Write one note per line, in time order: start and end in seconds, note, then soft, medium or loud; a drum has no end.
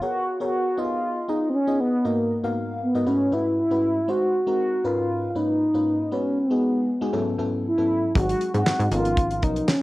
0.01 0.29 B3 medium
0.01 0.29 F#4 medium
0.01 0.38 F#4 loud
0.01 0.29 G#4 medium
0.01 0.30 A#4 medium
0.01 0.30 C#5 medium
0.40 0.76 B3 medium
0.40 0.77 F#4 medium
0.40 0.81 F#4 loud
0.40 0.77 G#4 medium
0.40 0.77 A#4 medium
0.40 0.77 C#5 medium
0.77 1.19 B3 medium
0.77 1.19 D#4 medium
0.77 1.19 F4 medium
0.77 1.31 F4 loud
0.77 0.84 G4 medium
0.77 1.19 D#5 medium
0.84 1.22 G#4 medium
1.28 1.56 B3 medium
1.28 1.56 D#4 medium
1.28 1.48 D#4 loud
1.28 1.56 F4 medium
1.28 1.57 G#4 medium
1.28 1.57 D#5 medium
1.50 1.57 C4 medium
1.55 1.80 C#4 loud
1.67 1.95 B3 medium
1.67 1.95 D#4 medium
1.67 1.95 F4 medium
1.67 1.95 G#4 medium
1.67 1.95 D#5 medium
1.80 2.07 B3 loud
2.05 2.32 G#2 medium
2.05 2.56 A#3 medium
2.05 2.33 B3 medium
2.05 2.33 D#4 medium
2.05 2.33 F#4 medium
2.05 2.33 A#4 medium
2.05 2.33 D#5 medium
2.43 2.80 G#2 medium
2.43 2.80 B3 medium
2.43 2.80 D#4 medium
2.43 2.80 F#4 medium
2.43 2.80 A#4 medium
2.43 2.80 F5 loud
2.82 3.09 B3 medium
2.94 3.05 G#2 medium
2.94 3.07 B3 medium
2.94 3.07 D#4 medium
2.94 3.06 F#4 medium
2.94 3.07 A#4 medium
2.94 3.07 D#5 loud
3.06 3.27 G#2 medium
3.06 3.27 A3 medium
3.06 3.27 C#4 medium
3.06 3.35 C#4 loud
3.06 3.27 E4 medium
3.06 3.27 F#4 medium
3.06 3.28 B4 medium
3.32 3.60 G#2 medium
3.32 3.60 A3 medium
3.32 3.60 C#4 medium
3.32 3.60 E4 medium
3.32 3.58 E4 loud
3.32 3.60 F#4 medium
3.32 3.60 B4 medium
3.59 4.11 E4 loud
3.71 3.98 G#2 medium
3.71 3.98 A3 medium
3.71 3.98 C#4 medium
3.71 3.98 E4 medium
3.71 3.99 F#4 medium
3.71 3.99 B4 medium
4.08 4.36 G#3 medium
4.08 4.36 C4 medium
4.08 4.36 D#4 medium
4.08 4.36 F#4 medium
4.08 4.48 F#4 loud
4.08 4.36 C5 medium
4.47 4.83 G#3 medium
4.47 4.83 C4 medium
4.47 4.83 D#4 medium
4.47 4.83 F#4 medium
4.47 4.88 F#4 loud
4.47 4.83 A#4 medium
4.84 5.26 G#2 medium
4.84 5.26 C#4 medium
4.84 5.26 D#4 medium
4.84 5.26 F4 medium
4.84 5.30 F4 loud
4.84 5.26 A#4 medium
4.84 5.26 B4 loud
5.30 5.38 F4 medium
5.35 5.63 G#2 medium
5.35 5.63 A#3 medium
5.35 5.63 C#4 medium
5.35 5.63 D#4 medium
5.35 6.15 D#4 loud
5.35 5.63 F4 medium
5.35 5.63 B4 medium
5.74 6.02 G#2 medium
5.74 6.02 A#3 medium
5.74 6.02 C#4 medium
5.74 6.02 D#4 medium
5.74 6.02 F4 medium
5.74 6.02 B4 medium
6.11 6.39 G#3 medium
6.11 6.39 B3 medium
6.11 6.40 C#4 loud
6.11 6.40 D#4 medium
6.11 6.40 F#4 medium
6.11 6.40 B4 medium
6.39 7.40 B3 loud
6.50 6.87 G#3 medium
6.50 6.87 B3 medium
6.50 6.87 D#4 medium
6.50 6.87 F#4 medium
6.50 6.87 G#4 medium
7.01 7.13 G#3 loud
7.01 7.12 B3 medium
7.01 7.14 D#4 medium
7.01 7.14 F#4 medium
7.01 7.14 G#4 loud
7.13 7.34 G#2 loud
7.13 7.34 F#3 medium
7.13 7.34 B3 medium
7.13 7.34 C#4 medium
7.13 7.34 E4 medium
7.13 7.34 A4 loud
7.38 7.66 G#2 medium
7.38 7.66 F#3 medium
7.38 7.67 B3 medium
7.38 7.67 C#4 medium
7.38 7.67 E4 medium
7.38 7.67 A4 loud
7.66 8.13 E4 loud
7.78 8.05 G#2 medium
7.78 8.05 F#3 medium
7.78 8.05 B3 medium
7.78 8.05 C#4 medium
7.78 8.05 E4 medium
7.78 8.06 A4 medium
8.15 8.34 G#1 loud
8.15 8.43 F#3 medium
8.15 8.43 G#3 medium
8.15 8.43 C4 medium
8.15 8.43 D#4 medium
8.15 8.52 F#4 loud
8.15 8.43 G#4 medium
8.15 kick loud
8.15 closed hi-hat medium
8.29 closed hi-hat medium
8.41 closed hi-hat medium
8.54 8.63 G#2 medium
8.54 8.90 F#3 medium
8.54 8.90 G#3 medium
8.54 8.90 C4 medium
8.54 8.90 D#4 medium
8.54 8.90 F#4 loud
8.54 8.90 G#4 medium
8.54 closed hi-hat soft
8.66 snare loud
8.66 clap medium
8.79 8.88 G#2 loud
8.79 closed hi-hat medium
8.91 9.44 G#1 loud
8.91 9.33 F3 medium
8.91 9.33 B3 medium
8.91 9.33 C#4 medium
8.91 9.33 D#4 medium
8.91 9.45 F4 loud
8.91 8.98 A4 medium
8.91 closed hi-hat medium
8.99 9.36 A#4 medium
9.05 closed hi-hat medium
9.17 kick loud
9.17 closed hi-hat loud
9.31 closed hi-hat medium
9.42 9.62 B1 medium
9.42 9.70 F3 medium
9.42 9.70 B3 medium
9.42 9.70 C#4 medium
9.42 9.70 D#4 medium
9.42 9.70 D#4 loud
9.42 9.70 A#4 medium
9.42 kick medium
9.42 closed hi-hat medium
9.56 closed hi-hat medium
9.68 9.82 C#4 loud
9.68 snare loud
9.68 clap medium